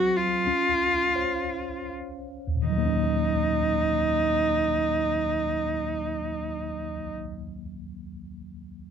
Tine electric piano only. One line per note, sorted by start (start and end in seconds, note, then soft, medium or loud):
0.00 0.43 F#3 soft
0.00 0.43 C4 medium
0.00 0.43 G#4 soft
0.00 0.43 C5 soft
0.47 2.62 C#4 soft
1.16 2.62 C5 soft
1.16 2.62 C#5 soft
1.16 2.63 F5 soft
2.47 6.92 D#2 soft
2.55 6.99 A#2 soft
2.63 7.07 D#3 soft
2.70 7.15 F#3 soft
2.78 7.22 A#3 soft
2.85 7.29 C#4 soft